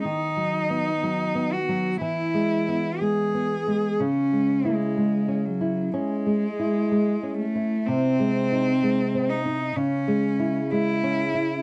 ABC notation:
X:1
M:4/4
L:1/16
Q:1/4=62
K:C#m
V:1 name="Cello"
D6 F2 E4 G4 | C3 G,3 F,2 G,6 A,2 | ^B,6 D2 C4 E4 |]
V:2 name="Nylon-string guitar" clef=bass
(3D,2 F,2 B,2 (3F,2 B,2 F,2 (3E,2 G,2 B,2 (3G,2 B,2 G,2 | (3C,2 G,2 E2 (3G,2 C2 E2 (3C2 G,2 E2 (3G,2 C2 E2 | (3^B,,2 G,2 D2 (3G,2 ^B,2 D2 (3C,2 G,2 E2 (3G,2 C2 E2 |]